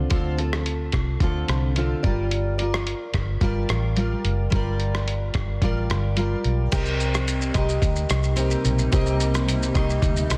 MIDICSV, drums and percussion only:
0, 0, Header, 1, 2, 480
1, 0, Start_track
1, 0, Tempo, 550964
1, 97, Time_signature, 4, 2, 24, 8
1, 9040, End_track
2, 0, Start_track
2, 0, Title_t, "Drums"
2, 91, Note_on_c, 9, 42, 76
2, 95, Note_on_c, 9, 36, 102
2, 178, Note_off_c, 9, 42, 0
2, 182, Note_off_c, 9, 36, 0
2, 336, Note_on_c, 9, 42, 56
2, 423, Note_off_c, 9, 42, 0
2, 461, Note_on_c, 9, 37, 83
2, 549, Note_off_c, 9, 37, 0
2, 574, Note_on_c, 9, 42, 71
2, 662, Note_off_c, 9, 42, 0
2, 805, Note_on_c, 9, 42, 49
2, 813, Note_on_c, 9, 36, 71
2, 819, Note_on_c, 9, 37, 75
2, 892, Note_off_c, 9, 42, 0
2, 900, Note_off_c, 9, 36, 0
2, 906, Note_off_c, 9, 37, 0
2, 1048, Note_on_c, 9, 36, 91
2, 1049, Note_on_c, 9, 42, 74
2, 1135, Note_off_c, 9, 36, 0
2, 1136, Note_off_c, 9, 42, 0
2, 1293, Note_on_c, 9, 42, 51
2, 1302, Note_on_c, 9, 37, 85
2, 1380, Note_off_c, 9, 42, 0
2, 1389, Note_off_c, 9, 37, 0
2, 1534, Note_on_c, 9, 42, 61
2, 1621, Note_off_c, 9, 42, 0
2, 1777, Note_on_c, 9, 36, 90
2, 1777, Note_on_c, 9, 42, 46
2, 1864, Note_off_c, 9, 42, 0
2, 1865, Note_off_c, 9, 36, 0
2, 2016, Note_on_c, 9, 42, 69
2, 2103, Note_off_c, 9, 42, 0
2, 2256, Note_on_c, 9, 42, 52
2, 2344, Note_off_c, 9, 42, 0
2, 2388, Note_on_c, 9, 37, 92
2, 2475, Note_off_c, 9, 37, 0
2, 2498, Note_on_c, 9, 42, 70
2, 2585, Note_off_c, 9, 42, 0
2, 2732, Note_on_c, 9, 42, 45
2, 2737, Note_on_c, 9, 36, 73
2, 2746, Note_on_c, 9, 37, 84
2, 2819, Note_off_c, 9, 42, 0
2, 2825, Note_off_c, 9, 36, 0
2, 2833, Note_off_c, 9, 37, 0
2, 2972, Note_on_c, 9, 36, 82
2, 2973, Note_on_c, 9, 42, 73
2, 3059, Note_off_c, 9, 36, 0
2, 3060, Note_off_c, 9, 42, 0
2, 3214, Note_on_c, 9, 42, 49
2, 3223, Note_on_c, 9, 37, 87
2, 3301, Note_off_c, 9, 42, 0
2, 3310, Note_off_c, 9, 37, 0
2, 3455, Note_on_c, 9, 42, 66
2, 3542, Note_off_c, 9, 42, 0
2, 3699, Note_on_c, 9, 42, 51
2, 3786, Note_off_c, 9, 42, 0
2, 3939, Note_on_c, 9, 42, 72
2, 3942, Note_on_c, 9, 36, 104
2, 4026, Note_off_c, 9, 42, 0
2, 4029, Note_off_c, 9, 36, 0
2, 4179, Note_on_c, 9, 42, 50
2, 4266, Note_off_c, 9, 42, 0
2, 4310, Note_on_c, 9, 37, 90
2, 4397, Note_off_c, 9, 37, 0
2, 4423, Note_on_c, 9, 42, 74
2, 4510, Note_off_c, 9, 42, 0
2, 4651, Note_on_c, 9, 42, 45
2, 4659, Note_on_c, 9, 36, 79
2, 4665, Note_on_c, 9, 37, 74
2, 4738, Note_off_c, 9, 42, 0
2, 4746, Note_off_c, 9, 36, 0
2, 4752, Note_off_c, 9, 37, 0
2, 4893, Note_on_c, 9, 36, 94
2, 4895, Note_on_c, 9, 42, 71
2, 4980, Note_off_c, 9, 36, 0
2, 4982, Note_off_c, 9, 42, 0
2, 5139, Note_on_c, 9, 42, 50
2, 5148, Note_on_c, 9, 37, 86
2, 5226, Note_off_c, 9, 42, 0
2, 5235, Note_off_c, 9, 37, 0
2, 5373, Note_on_c, 9, 42, 67
2, 5460, Note_off_c, 9, 42, 0
2, 5614, Note_on_c, 9, 42, 48
2, 5702, Note_off_c, 9, 42, 0
2, 5856, Note_on_c, 9, 42, 81
2, 5856, Note_on_c, 9, 82, 88
2, 5857, Note_on_c, 9, 49, 97
2, 5860, Note_on_c, 9, 36, 125
2, 5943, Note_off_c, 9, 42, 0
2, 5943, Note_off_c, 9, 82, 0
2, 5944, Note_off_c, 9, 49, 0
2, 5947, Note_off_c, 9, 36, 0
2, 5973, Note_on_c, 9, 82, 53
2, 6060, Note_off_c, 9, 82, 0
2, 6101, Note_on_c, 9, 42, 53
2, 6101, Note_on_c, 9, 82, 58
2, 6189, Note_off_c, 9, 42, 0
2, 6189, Note_off_c, 9, 82, 0
2, 6222, Note_on_c, 9, 82, 63
2, 6229, Note_on_c, 9, 37, 91
2, 6309, Note_off_c, 9, 82, 0
2, 6316, Note_off_c, 9, 37, 0
2, 6342, Note_on_c, 9, 42, 93
2, 6342, Note_on_c, 9, 82, 85
2, 6429, Note_off_c, 9, 42, 0
2, 6429, Note_off_c, 9, 82, 0
2, 6459, Note_on_c, 9, 82, 56
2, 6546, Note_off_c, 9, 82, 0
2, 6571, Note_on_c, 9, 42, 56
2, 6571, Note_on_c, 9, 82, 54
2, 6578, Note_on_c, 9, 36, 86
2, 6585, Note_on_c, 9, 37, 94
2, 6658, Note_off_c, 9, 42, 0
2, 6658, Note_off_c, 9, 82, 0
2, 6665, Note_off_c, 9, 36, 0
2, 6672, Note_off_c, 9, 37, 0
2, 6700, Note_on_c, 9, 82, 54
2, 6787, Note_off_c, 9, 82, 0
2, 6812, Note_on_c, 9, 36, 99
2, 6816, Note_on_c, 9, 42, 90
2, 6816, Note_on_c, 9, 82, 76
2, 6899, Note_off_c, 9, 36, 0
2, 6903, Note_off_c, 9, 42, 0
2, 6903, Note_off_c, 9, 82, 0
2, 6933, Note_on_c, 9, 82, 60
2, 7020, Note_off_c, 9, 82, 0
2, 7053, Note_on_c, 9, 42, 60
2, 7053, Note_on_c, 9, 82, 61
2, 7062, Note_on_c, 9, 37, 107
2, 7140, Note_off_c, 9, 42, 0
2, 7140, Note_off_c, 9, 82, 0
2, 7149, Note_off_c, 9, 37, 0
2, 7173, Note_on_c, 9, 82, 46
2, 7260, Note_off_c, 9, 82, 0
2, 7290, Note_on_c, 9, 42, 72
2, 7290, Note_on_c, 9, 82, 82
2, 7377, Note_off_c, 9, 42, 0
2, 7377, Note_off_c, 9, 82, 0
2, 7410, Note_on_c, 9, 82, 58
2, 7497, Note_off_c, 9, 82, 0
2, 7535, Note_on_c, 9, 42, 60
2, 7535, Note_on_c, 9, 82, 59
2, 7622, Note_off_c, 9, 42, 0
2, 7622, Note_off_c, 9, 82, 0
2, 7654, Note_on_c, 9, 82, 51
2, 7741, Note_off_c, 9, 82, 0
2, 7776, Note_on_c, 9, 42, 82
2, 7776, Note_on_c, 9, 82, 87
2, 7779, Note_on_c, 9, 36, 110
2, 7863, Note_off_c, 9, 42, 0
2, 7863, Note_off_c, 9, 82, 0
2, 7866, Note_off_c, 9, 36, 0
2, 7893, Note_on_c, 9, 82, 55
2, 7980, Note_off_c, 9, 82, 0
2, 8018, Note_on_c, 9, 42, 60
2, 8018, Note_on_c, 9, 82, 67
2, 8105, Note_off_c, 9, 42, 0
2, 8105, Note_off_c, 9, 82, 0
2, 8140, Note_on_c, 9, 82, 73
2, 8147, Note_on_c, 9, 37, 102
2, 8227, Note_off_c, 9, 82, 0
2, 8234, Note_off_c, 9, 37, 0
2, 8264, Note_on_c, 9, 42, 86
2, 8264, Note_on_c, 9, 82, 98
2, 8351, Note_off_c, 9, 42, 0
2, 8351, Note_off_c, 9, 82, 0
2, 8386, Note_on_c, 9, 82, 53
2, 8473, Note_off_c, 9, 82, 0
2, 8496, Note_on_c, 9, 42, 57
2, 8496, Note_on_c, 9, 82, 56
2, 8498, Note_on_c, 9, 36, 92
2, 8510, Note_on_c, 9, 37, 85
2, 8583, Note_off_c, 9, 42, 0
2, 8583, Note_off_c, 9, 82, 0
2, 8585, Note_off_c, 9, 36, 0
2, 8597, Note_off_c, 9, 37, 0
2, 8623, Note_on_c, 9, 82, 51
2, 8710, Note_off_c, 9, 82, 0
2, 8731, Note_on_c, 9, 36, 106
2, 8734, Note_on_c, 9, 42, 80
2, 8734, Note_on_c, 9, 82, 82
2, 8818, Note_off_c, 9, 36, 0
2, 8821, Note_off_c, 9, 42, 0
2, 8821, Note_off_c, 9, 82, 0
2, 8856, Note_on_c, 9, 82, 65
2, 8943, Note_off_c, 9, 82, 0
2, 8976, Note_on_c, 9, 42, 62
2, 8976, Note_on_c, 9, 82, 61
2, 8985, Note_on_c, 9, 37, 106
2, 9040, Note_off_c, 9, 37, 0
2, 9040, Note_off_c, 9, 42, 0
2, 9040, Note_off_c, 9, 82, 0
2, 9040, End_track
0, 0, End_of_file